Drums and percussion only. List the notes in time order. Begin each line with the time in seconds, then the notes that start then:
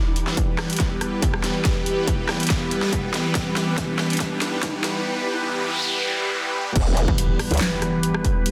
0.16 closed hi-hat
0.27 snare
0.37 kick, closed hi-hat
0.59 cross-stick, snare
0.70 closed hi-hat
0.73 closed hi-hat
0.77 kick, snare, closed hi-hat
0.80 closed hi-hat
1.01 cross-stick, closed hi-hat
1.22 kick, closed hi-hat
1.34 cross-stick
1.44 snare, closed hi-hat
1.65 kick, snare, closed hi-hat
1.86 closed hi-hat
2.08 kick, closed hi-hat
2.29 cross-stick, snare
2.40 closed hi-hat
2.43 closed hi-hat
2.47 kick, snare, closed hi-hat
2.50 closed hi-hat
2.71 closed hi-hat
2.83 snare
2.93 kick, closed hi-hat
3.14 snare, closed hi-hat
3.35 kick, snare, closed hi-hat
3.56 snare, closed hi-hat
3.78 kick, snare, closed hi-hat
3.99 snare
4.10 closed hi-hat
4.13 closed hi-hat
4.17 kick, snare, closed hi-hat
4.20 closed hi-hat
4.42 snare, closed hi-hat
4.63 kick, snare, closed hi-hat
4.84 snare, closed hi-hat
6.76 kick, closed hi-hat, crash
6.97 closed hi-hat
7.08 kick
7.18 closed hi-hat
7.39 cross-stick, open hi-hat
7.51 closed hi-hat
7.54 closed hi-hat
7.57 snare, clap, closed hi-hat
7.61 closed hi-hat
7.82 cross-stick, closed hi-hat
8.03 closed hi-hat
8.14 cross-stick
8.25 kick, closed hi-hat
8.46 closed hi-hat